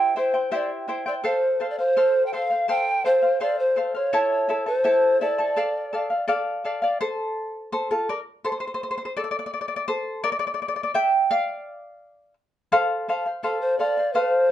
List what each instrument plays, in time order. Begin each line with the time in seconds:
Already playing: charango E4 G4 C5 E5 G5, pan flute G5
0.16 charango E4 C5 E5 G5, pan flute C5
0.34 charango E4 C5 G5
0.51 charango E4 G4 C5 E5 G5, pan flute D5
0.88 charango E4 C5 E5 G5
1.06 charango E4 C5 G5, pan flute D5
1.24 charango A4 C5 F5, pan flute C5
1.60 charango A4 C5 F5
1.70 pan flute D5
1.79 pan flute C5, charango C5 F5
1.96 charango A4 C5 F5
2.26 pan flute G5
2.33 charango A4 C5 F5, pan flute F5
2.50 charango C5 F5
2.68 charango A4 C5 F5, pan flute G5
3.05 charango A4 C5 F5, pan flute C5
3.23 charango C5 F5
3.40 charango A4 C5 F5, pan flute D5
3.59 pan flute C5
3.76 charango A4 C5 F5
3.95 charango C5 F5, pan flute C#5
4.13 charango E4 A4 C#5 E5 A5
4.49 charango E4 A4 E5 A5
4.66 charango E4 A4 A5, pan flute C5
4.84 charango E4 A4 E5 A5
5.21 charango E4 A4 E5 A5, pan flute D5
5.38 charango E4 A4 A5
5.56 charango A4 D5 F5
5.93 charango A4 D5 F5
6.10 charango D5 F5
6.28 charango A4 D5 F5
6.64 charango A4 D5 F5
6.82 charango D5 F5
7.01 charango A4 C5
7.72 charango A4 C5
7.91 charango F4 A4
8.09 charango A#4 D5
8.45 charango A4 C5
8.52 charango C5
8.60 charango C5
8.67 charango C5
8.74 charango C5
8.83 charango C5
8.91 charango C5
8.98 charango C5
9.05 charango C5
9.17 charango A4 D5
9.31 charango D5
9.39 charango D5
9.46 charango D5
9.54 charango D5
9.61 charango D5
9.68 charango D5
9.76 charango D5
9.88 charango A4 C5
10.24 charango A#4 D5
10.32 charango D5
10.39 charango D5
10.47 charango D5
10.54 charango D5
10.62 charango D5
10.68 charango D5
10.76 charango D5
10.83 charango D5
10.94 charango E5 G5
11.31 charango D5 F5
12.72 charango A4 C5 F5
13.09 charango A4 C5 F5
13.26 charango C5 F5
13.43 charango A4 C5 F5, pan flute A4
13.61 pan flute C5
13.78 charango A4 C5 F5, pan flute D5
13.97 charango C5 F5
14.13 charango A4 C5 F5, pan flute B4
14.26 pan flute C5